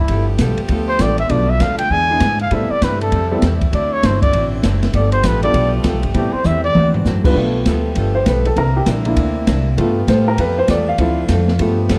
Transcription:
0.00 E4
0.08 G1 F3 G3 A3 B3 F4 G4 A4, kick, ride
0.38 B1 G3 B3 F4 A4, kick, snare, hi-hat pedal, ride
0.57 muted upright bass stroke, ride
0.68 D2 G3 B3 F4 A4, kick, ride
0.88 C5
0.99 A1 G3 A3 B3 D4 F4 G4 A4 D5, kick, snare, hi-hat pedal, ride
1.18 E5, ride
1.29 B1 B2 D3 F3 A3 B3 D4 F4 A4 D5, kick, ride
1.50 E5
1.60 D2 B2 F3 A3 D4 F5, kick, snare, hi-hat pedal, ride
1.78 G5, ride
1.90 E2 E3 G#3 B3 D4 E4 G#4 G#5, kick
2.10 G#3 B3 D4 E4 G#4
2.20 G#2 E3 B3 D4 G#4, kick, snare, hi-hat pedal, ride
2.39 F5, ride
2.51 A2 C3 G3 A3 B3 C4 E4 A4 E5, kick, ride
2.70 D5, muted upright bass stroke
2.82 G2 A2 G3 C4 E4 B4, kick, snare, hi-hat pedal, ride
3.01 A4, ride
3.12 F2 A2 G3 C4 E4, kick, ride
3.32 G3 B3 C4 E4 A4
3.42 E2 A2 G3 C4 E4, kick, snare, hi-hat pedal, ride
3.61 kick, ride
3.71 D2 D3 F#3 C4 D5, kick, ride
3.75 E4
3.93 C#5
4.03 G1 D3 F#3 C4 E4 C5, kick, snare, hi-hat pedal, ride
4.22 D5, kick, ride
4.33 A1 D3 F#3 C4 E4, kick, ride
4.63 F#1 D3 F#3 C4 E4, kick, snare, hi-hat pedal, ride
4.83 snare, ride
4.93 G1 F3 G3 A3 B3 F4 G4 A4 D5, kick, ride
5.12 C5, ride
5.23 A1 G3 B3 F4 A4 B4, kick, snare, hi-hat pedal, ride
5.43 G3 B3 D4 F4 A4 D5, ride
5.54 B1 G3 B3 F4 A4, kick, ride
5.83 D2 G3 B3 F4 A4, kick, snare, hi-hat pedal, ride
5.94 B1
6.03 G1, ride
6.14 A2 E3 G3 B3 C4 E4 G4 A4, kick, ride
6.33 C5, muted upright bass stroke
6.44 E2 A2 G3 C4 E4 E5, hi-hat pedal, mid tom
6.64 D5
6.75 D2 D3 F#3 C4 D4 E4 F#4, mid tom
6.94 floor tom
7.05 F#2 D3 F#3 C4 E4, snare, hi-hat pedal
7.24 G3 B3 D4 F4 B4, kick, crash
7.35 B1 F3 G3 A3 B3 F4 G4, kick
7.39 A4
7.66 D2 G3 B3 F4 A4, kick, snare, hi-hat pedal, ride
7.95 G1 G3 B3 F4 A4, kick, ride
8.15 C5
8.26 B1 G3 B3 F4 A4 B4, kick, snare, hi-hat pedal, ride
8.45 A4, ride
8.56 C2 C3 D3 A#3 C4 D4 E4 A#4, kick, ride
8.76 G4
8.86 A#1 C3 A#3 D4 E4, kick, snare, hi-hat pedal, ride
9.05 A#3 D4 E4, ride
9.16 D2 C3 A#3 D4 E4, kick, ride
9.47 C2 C3 A#3 D4 E4, kick, snare, hi-hat pedal, ride
9.76 G2 G3 A3 B3 F4 G4, kick, ride
9.80 A4
10.07 A2 G3 B3 F4 A4 C5, kick, snare, hi-hat pedal, ride
10.28 A#4
10.37 F2 G3 B3 F4 A4 B4, kick, ride
10.58 C5
10.68 E2 G3 B3 F4 A4 D5, kick, snare, hi-hat pedal, ride
10.88 F5
10.98 D2 D3 F3 C4 E4 F4 A4, kick, ride
11.28 F2 D3 C4 F4 A4, kick, snare, hi-hat pedal, ride
11.48 snare
11.59 G2 F3 G3 A3 B3 F4 G4 A4, kick, ride
11.89 F2 G3 B3 F4 A4, kick, snare, hi-hat pedal, ride

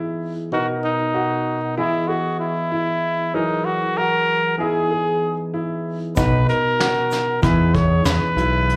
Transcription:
Already playing: E3 B3 D#4 E4 G#4
0.52 B2 B3 D#4 F#4 A#4
0.84 D#4
1.14 F#4
1.77 E3 B3 E4 G#4 D#5
2.08 F#4 G#4
2.40 E4
2.72 E4
3.34 E3 F#3 D#4 G#4 A#4
3.65 F#4
3.97 F#4 A#4
4.58 E3 B3 D#4 E4 G#4
4.91 G#4
5.54 E4
6.16 B1 B2 B3 D#4 F#4 B4, kick, closed hi-hat, shaker
6.49 A#4, closed hi-hat
6.80 F#4, snare, closed hi-hat
7.11 snare, closed hi-hat, shaker
7.41 E2 E3 B3 D#4 E4 G#4 B4, kick, closed hi-hat, shaker
7.75 G#4 C#5, kick, closed hi-hat
8.05 E2 B4, snare, closed hi-hat, shaker
8.36 B1 E4, closed hi-hat
8.69 closed hi-hat

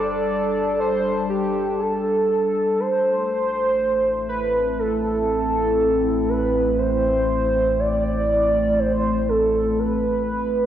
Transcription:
Already playing: G1 G3 D4 A4 D5 A5
0.80 C5
1.29 G4
1.80 A4
2.79 A1 A3 C5
3.09 E4
3.67 C4
4.29 B4
4.79 A4
6.29 B4
6.78 C5
7.79 D5
8.79 C5
9.29 A4
9.79 B4

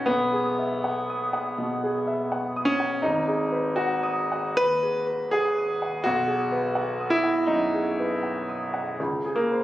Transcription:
0.06 B1 B3
0.33 G#4
0.59 E5
0.84 F#5
1.10 D#6
1.33 F#5
1.58 B2
1.84 G#4
2.07 E5
2.32 F#5
2.56 D#6
2.65 C#4
2.80 F#5
3.02 G#1 D#4
3.28 G#4
3.52 B4
3.76 F#4 F#5
4.03 D#6
4.32 F#5
4.57 D#2 B4
4.83 G#4
5.07 B4
5.31 G#4 F#5
5.58 D#6
5.82 F#5
6.04 B1 F#4
6.28 G#4
6.52 B4
6.75 F#5
7.00 D#6
7.10 E4
7.23 F#5
7.46 F#2 D#4
7.74 G#4
7.99 B4
8.23 F#5
8.49 D#6
8.74 F#5
9.00 C#2
9.26 G#4
9.36 A#3
9.51 C5

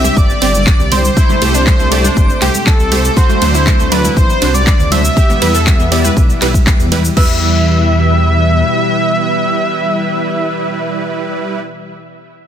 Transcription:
Already playing: C3 D3 G3 D4 G4 E5 D6 E6
0.04 G4, high conga, cabasa
0.17 G1 D5 D6, kick, cabasa
0.30 cabasa
0.42 G1 C4 G4 D5, open hi-hat, ride
0.55 high conga, cabasa
0.67 kick, clap, cabasa
0.79 C2, low conga, cabasa
0.92 C4 G4 C5 D5 C6, open hi-hat, ride, high conga
1.05 cabasa
1.17 A3 E4, kick, cabasa
1.29 A3, high conga, low conga, cabasa
1.42 C2 A3 G4 C5, open hi-hat, ride
1.54 D4, cabasa
1.67 A3, kick, clap, high conga, cabasa
1.79 C2 A3, cabasa
1.92 A3 G4 D5, open hi-hat, ride
2.04 D4, high conga, cabasa
2.17 G1, kick, low conga, cabasa
2.30 cabasa
2.42 C2 A3 G4 C5 G5, clap, open hi-hat, ride
2.55 high conga, cabasa
2.67 A4 A5, kick, clap, cabasa
2.79 C2, cabasa
2.91 A3 G4 C5, open hi-hat, ride, high conga
3.05 cabasa
3.17 C3 F#3 D4 F#4 C5 C6, kick, cabasa
3.29 A3, high conga, cabasa
3.42 D2 F#3 A3 D4 C5, open hi-hat, ride
3.54 E4, cabasa
3.67 A3, kick, clap, high conga, cabasa
3.79 D2 A3, cabasa
3.92 F#3 A3 D4 B4 D5 B5, open hi-hat, ride
4.04 E4, high conga, cabasa
4.17 A1 C5 C6, kick, cabasa
4.30 cabasa
4.42 C2 F#3 D4 C5, open hi-hat, ride
4.54 D5 D6, high conga, cabasa
4.67 kick, clap, cabasa
4.79 D2, low conga, cabasa
4.91 F#3 D4 C5 E5 E6, open hi-hat, ride, high conga
5.05 cabasa
5.17 B2 E3 G3 E4 G4, kick, cabasa
5.29 B3, high conga, low conga, cabasa
5.42 E2 G3 B3 E4 B4, open hi-hat, ride
5.54 A4, cabasa
5.67 B3, kick, clap, high conga, cabasa
5.79 E2 B3, cabasa
5.92 G3 B3 E4 D5, open hi-hat, ride
6.04 B4, high conga, cabasa
6.17 B1, kick, low conga, cabasa
6.30 cabasa
6.42 B1 G3 E4 B4, clap, open hi-hat, ride
6.54 kick, high conga, cabasa
6.67 kick, clap, cabasa
6.79 E2, cabasa
6.92 G3 E4 B4, open hi-hat, ride, high conga
7.05 cabasa
7.17 E2 B2 E3 G3 E4 G4 B4 E5 E6, kick, crash

